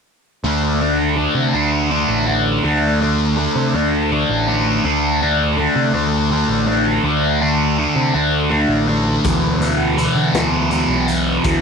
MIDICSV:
0, 0, Header, 1, 4, 480
1, 0, Start_track
1, 0, Tempo, 733496
1, 287, Time_signature, 6, 3, 24, 8
1, 7600, End_track
2, 0, Start_track
2, 0, Title_t, "Distorted electric guitar"
2, 0, Program_c, 0, 30
2, 289, Note_on_c, 0, 50, 77
2, 292, Note_on_c, 0, 57, 80
2, 298, Note_on_c, 0, 62, 83
2, 521, Note_off_c, 0, 62, 0
2, 525, Note_off_c, 0, 57, 0
2, 526, Note_off_c, 0, 50, 0
2, 529, Note_on_c, 0, 62, 78
2, 532, Note_on_c, 0, 57, 69
2, 534, Note_on_c, 0, 50, 66
2, 753, Note_off_c, 0, 50, 0
2, 757, Note_off_c, 0, 57, 0
2, 761, Note_on_c, 0, 50, 64
2, 764, Note_off_c, 0, 62, 0
2, 765, Note_on_c, 0, 57, 67
2, 772, Note_on_c, 0, 62, 72
2, 998, Note_off_c, 0, 62, 0
2, 1004, Note_off_c, 0, 57, 0
2, 1005, Note_off_c, 0, 50, 0
2, 1006, Note_on_c, 0, 62, 66
2, 1012, Note_on_c, 0, 57, 61
2, 1017, Note_on_c, 0, 50, 59
2, 1237, Note_off_c, 0, 50, 0
2, 1240, Note_off_c, 0, 57, 0
2, 1242, Note_off_c, 0, 62, 0
2, 1245, Note_on_c, 0, 50, 65
2, 1248, Note_on_c, 0, 57, 67
2, 1250, Note_on_c, 0, 62, 72
2, 1475, Note_off_c, 0, 62, 0
2, 1482, Note_off_c, 0, 57, 0
2, 1483, Note_on_c, 0, 62, 76
2, 1484, Note_off_c, 0, 50, 0
2, 1489, Note_on_c, 0, 57, 67
2, 1492, Note_on_c, 0, 50, 61
2, 1715, Note_off_c, 0, 50, 0
2, 1722, Note_on_c, 0, 50, 75
2, 1723, Note_off_c, 0, 57, 0
2, 1725, Note_off_c, 0, 62, 0
2, 1730, Note_on_c, 0, 57, 81
2, 1733, Note_on_c, 0, 62, 89
2, 1963, Note_off_c, 0, 62, 0
2, 1967, Note_off_c, 0, 50, 0
2, 1968, Note_off_c, 0, 57, 0
2, 1970, Note_on_c, 0, 62, 80
2, 1976, Note_on_c, 0, 57, 66
2, 1981, Note_on_c, 0, 50, 65
2, 2194, Note_off_c, 0, 50, 0
2, 2200, Note_off_c, 0, 57, 0
2, 2202, Note_on_c, 0, 50, 71
2, 2205, Note_off_c, 0, 62, 0
2, 2208, Note_on_c, 0, 57, 76
2, 2212, Note_on_c, 0, 62, 79
2, 2443, Note_off_c, 0, 62, 0
2, 2447, Note_off_c, 0, 50, 0
2, 2450, Note_off_c, 0, 57, 0
2, 2451, Note_on_c, 0, 62, 80
2, 2457, Note_on_c, 0, 57, 63
2, 2460, Note_on_c, 0, 50, 58
2, 2688, Note_off_c, 0, 50, 0
2, 2691, Note_off_c, 0, 62, 0
2, 2692, Note_off_c, 0, 57, 0
2, 2696, Note_on_c, 0, 50, 74
2, 2700, Note_on_c, 0, 57, 69
2, 2700, Note_on_c, 0, 62, 78
2, 2925, Note_off_c, 0, 62, 0
2, 2928, Note_off_c, 0, 57, 0
2, 2931, Note_off_c, 0, 50, 0
2, 2933, Note_on_c, 0, 62, 78
2, 2936, Note_on_c, 0, 57, 66
2, 2938, Note_on_c, 0, 50, 59
2, 3161, Note_off_c, 0, 50, 0
2, 3166, Note_off_c, 0, 57, 0
2, 3169, Note_off_c, 0, 62, 0
2, 3169, Note_on_c, 0, 50, 77
2, 3174, Note_on_c, 0, 57, 92
2, 3177, Note_on_c, 0, 62, 91
2, 3408, Note_off_c, 0, 62, 0
2, 3411, Note_off_c, 0, 50, 0
2, 3413, Note_off_c, 0, 57, 0
2, 3416, Note_on_c, 0, 62, 83
2, 3420, Note_on_c, 0, 57, 78
2, 3421, Note_on_c, 0, 50, 61
2, 3641, Note_off_c, 0, 50, 0
2, 3646, Note_off_c, 0, 57, 0
2, 3649, Note_on_c, 0, 50, 73
2, 3654, Note_off_c, 0, 62, 0
2, 3654, Note_on_c, 0, 57, 66
2, 3660, Note_on_c, 0, 62, 87
2, 3879, Note_off_c, 0, 62, 0
2, 3883, Note_off_c, 0, 57, 0
2, 3886, Note_off_c, 0, 50, 0
2, 3887, Note_on_c, 0, 62, 72
2, 3891, Note_on_c, 0, 57, 59
2, 3894, Note_on_c, 0, 50, 55
2, 4123, Note_off_c, 0, 50, 0
2, 4129, Note_off_c, 0, 57, 0
2, 4129, Note_off_c, 0, 62, 0
2, 4131, Note_on_c, 0, 50, 66
2, 4136, Note_on_c, 0, 57, 70
2, 4142, Note_on_c, 0, 62, 73
2, 4359, Note_off_c, 0, 62, 0
2, 4365, Note_off_c, 0, 57, 0
2, 4367, Note_on_c, 0, 62, 75
2, 4369, Note_off_c, 0, 50, 0
2, 4373, Note_on_c, 0, 57, 68
2, 4376, Note_on_c, 0, 50, 66
2, 4601, Note_off_c, 0, 50, 0
2, 4606, Note_off_c, 0, 57, 0
2, 4608, Note_on_c, 0, 50, 85
2, 4609, Note_off_c, 0, 62, 0
2, 4614, Note_on_c, 0, 57, 82
2, 4619, Note_on_c, 0, 62, 82
2, 4842, Note_off_c, 0, 62, 0
2, 4847, Note_off_c, 0, 57, 0
2, 4849, Note_on_c, 0, 62, 76
2, 4850, Note_off_c, 0, 50, 0
2, 4855, Note_on_c, 0, 57, 72
2, 4858, Note_on_c, 0, 50, 62
2, 5085, Note_off_c, 0, 50, 0
2, 5088, Note_off_c, 0, 57, 0
2, 5090, Note_off_c, 0, 62, 0
2, 5093, Note_on_c, 0, 50, 61
2, 5096, Note_on_c, 0, 57, 67
2, 5099, Note_on_c, 0, 62, 68
2, 5318, Note_off_c, 0, 62, 0
2, 5323, Note_off_c, 0, 57, 0
2, 5326, Note_on_c, 0, 62, 76
2, 5327, Note_off_c, 0, 50, 0
2, 5331, Note_on_c, 0, 57, 63
2, 5334, Note_on_c, 0, 50, 52
2, 5555, Note_off_c, 0, 50, 0
2, 5557, Note_off_c, 0, 57, 0
2, 5562, Note_off_c, 0, 62, 0
2, 5563, Note_on_c, 0, 50, 63
2, 5565, Note_on_c, 0, 57, 73
2, 5570, Note_on_c, 0, 62, 76
2, 5800, Note_off_c, 0, 62, 0
2, 5804, Note_off_c, 0, 57, 0
2, 5807, Note_off_c, 0, 50, 0
2, 5808, Note_on_c, 0, 62, 72
2, 5812, Note_on_c, 0, 57, 66
2, 5814, Note_on_c, 0, 50, 58
2, 6049, Note_off_c, 0, 62, 0
2, 6051, Note_off_c, 0, 57, 0
2, 6052, Note_off_c, 0, 50, 0
2, 6052, Note_on_c, 0, 40, 87
2, 6055, Note_on_c, 0, 52, 90
2, 6056, Note_on_c, 0, 47, 85
2, 6283, Note_off_c, 0, 52, 0
2, 6288, Note_off_c, 0, 47, 0
2, 6290, Note_on_c, 0, 52, 69
2, 6291, Note_off_c, 0, 40, 0
2, 6296, Note_on_c, 0, 47, 71
2, 6300, Note_on_c, 0, 40, 56
2, 6516, Note_off_c, 0, 40, 0
2, 6520, Note_off_c, 0, 47, 0
2, 6523, Note_off_c, 0, 52, 0
2, 6524, Note_on_c, 0, 40, 69
2, 6528, Note_on_c, 0, 47, 70
2, 6531, Note_on_c, 0, 52, 78
2, 6759, Note_off_c, 0, 52, 0
2, 6763, Note_off_c, 0, 47, 0
2, 6764, Note_off_c, 0, 40, 0
2, 6767, Note_on_c, 0, 52, 68
2, 6771, Note_on_c, 0, 47, 65
2, 6772, Note_on_c, 0, 40, 60
2, 7002, Note_off_c, 0, 40, 0
2, 7004, Note_off_c, 0, 47, 0
2, 7008, Note_off_c, 0, 52, 0
2, 7010, Note_on_c, 0, 40, 66
2, 7012, Note_on_c, 0, 47, 68
2, 7015, Note_on_c, 0, 52, 73
2, 7244, Note_off_c, 0, 52, 0
2, 7248, Note_off_c, 0, 47, 0
2, 7249, Note_off_c, 0, 40, 0
2, 7252, Note_on_c, 0, 52, 64
2, 7256, Note_on_c, 0, 47, 66
2, 7259, Note_on_c, 0, 40, 62
2, 7480, Note_off_c, 0, 40, 0
2, 7481, Note_off_c, 0, 47, 0
2, 7486, Note_off_c, 0, 52, 0
2, 7488, Note_on_c, 0, 40, 82
2, 7489, Note_on_c, 0, 47, 86
2, 7494, Note_on_c, 0, 52, 93
2, 7600, Note_off_c, 0, 40, 0
2, 7600, Note_off_c, 0, 47, 0
2, 7600, Note_off_c, 0, 52, 0
2, 7600, End_track
3, 0, Start_track
3, 0, Title_t, "Picked electric bass"
3, 0, Program_c, 1, 34
3, 285, Note_on_c, 1, 38, 88
3, 823, Note_off_c, 1, 38, 0
3, 881, Note_on_c, 1, 48, 77
3, 992, Note_off_c, 1, 48, 0
3, 1005, Note_on_c, 1, 38, 74
3, 1329, Note_off_c, 1, 38, 0
3, 1364, Note_on_c, 1, 33, 82
3, 1688, Note_off_c, 1, 33, 0
3, 1724, Note_on_c, 1, 38, 86
3, 2263, Note_off_c, 1, 38, 0
3, 2325, Note_on_c, 1, 48, 84
3, 2435, Note_off_c, 1, 48, 0
3, 2444, Note_on_c, 1, 38, 83
3, 2769, Note_off_c, 1, 38, 0
3, 2809, Note_on_c, 1, 33, 84
3, 3132, Note_off_c, 1, 33, 0
3, 3166, Note_on_c, 1, 38, 90
3, 3704, Note_off_c, 1, 38, 0
3, 3766, Note_on_c, 1, 48, 86
3, 3876, Note_off_c, 1, 48, 0
3, 3881, Note_on_c, 1, 38, 81
3, 4207, Note_off_c, 1, 38, 0
3, 4242, Note_on_c, 1, 33, 83
3, 4568, Note_off_c, 1, 33, 0
3, 4601, Note_on_c, 1, 38, 84
3, 5141, Note_off_c, 1, 38, 0
3, 5206, Note_on_c, 1, 48, 84
3, 5315, Note_off_c, 1, 48, 0
3, 5330, Note_on_c, 1, 38, 85
3, 5652, Note_off_c, 1, 38, 0
3, 5680, Note_on_c, 1, 33, 86
3, 6006, Note_off_c, 1, 33, 0
3, 6051, Note_on_c, 1, 38, 92
3, 6586, Note_off_c, 1, 38, 0
3, 6644, Note_on_c, 1, 50, 80
3, 6754, Note_off_c, 1, 50, 0
3, 6761, Note_on_c, 1, 38, 79
3, 7085, Note_off_c, 1, 38, 0
3, 7121, Note_on_c, 1, 35, 84
3, 7446, Note_off_c, 1, 35, 0
3, 7490, Note_on_c, 1, 38, 86
3, 7600, Note_off_c, 1, 38, 0
3, 7600, End_track
4, 0, Start_track
4, 0, Title_t, "Drums"
4, 6049, Note_on_c, 9, 42, 95
4, 6052, Note_on_c, 9, 36, 106
4, 6115, Note_off_c, 9, 42, 0
4, 6117, Note_off_c, 9, 36, 0
4, 6293, Note_on_c, 9, 42, 65
4, 6358, Note_off_c, 9, 42, 0
4, 6531, Note_on_c, 9, 42, 66
4, 6597, Note_off_c, 9, 42, 0
4, 6770, Note_on_c, 9, 42, 86
4, 6772, Note_on_c, 9, 38, 104
4, 6836, Note_off_c, 9, 42, 0
4, 6838, Note_off_c, 9, 38, 0
4, 7008, Note_on_c, 9, 42, 62
4, 7074, Note_off_c, 9, 42, 0
4, 7250, Note_on_c, 9, 42, 68
4, 7316, Note_off_c, 9, 42, 0
4, 7488, Note_on_c, 9, 42, 86
4, 7491, Note_on_c, 9, 36, 108
4, 7554, Note_off_c, 9, 42, 0
4, 7556, Note_off_c, 9, 36, 0
4, 7600, End_track
0, 0, End_of_file